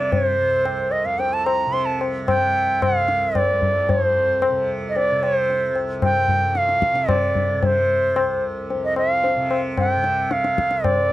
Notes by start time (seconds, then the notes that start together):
Already playing: C2 F2 C3 D5
0.12 C#5, tabla tin, tabla ge
0.27 C5
0.41 C2
0.65 tabla na
0.91 D#5
1.05 F2 F5
1.19 G5, tabla tin
1.33 A5
1.45 A#5, tabla na
1.66 C3
1.73 C6, tabla tin
1.86 A5
2.01 tabla na
2.27 C3 G5, tabla na, tabla ge
2.82 F5, tabla na, tabla ge
2.88 C2
3.08 tabla te
3.35 D5, tabla na, tabla ge
3.51 F2
3.62 tabla ge
3.89 F2 C#5, tabla tin, tabla ge
4.05 C5
4.42 tabla na
4.50 C3
4.89 D#5
4.96 D5, tabla tin
5.12 C3
5.23 C#5, tabla na
5.38 C5
5.50 tabla tin
5.72 C2, tabla na
6.02 G5, tabla na, tabla ge
6.28 tabla ge
6.33 F2
6.55 F5, tabla te
6.69 tabla te
6.82 tabla ke
6.93 C3, tabla te
7.09 D5, tabla na, tabla ge
7.35 tabla ge
7.53 C3
7.63 C5, tabla tin, tabla ge
8.14 C2, tabla na
8.70 F2, tabla tin
8.85 D#5
8.96 F5, tabla na
9.24 tabla tin
9.36 C3
9.51 tabla na
9.78 F#5, tabla na, tabla ge
9.90 G5
9.96 C3
10.04 tabla te
10.31 F5, tabla te
10.44 tabla te
10.58 C2, tabla ke
10.71 tabla te
10.84 D5, tabla na, tabla ge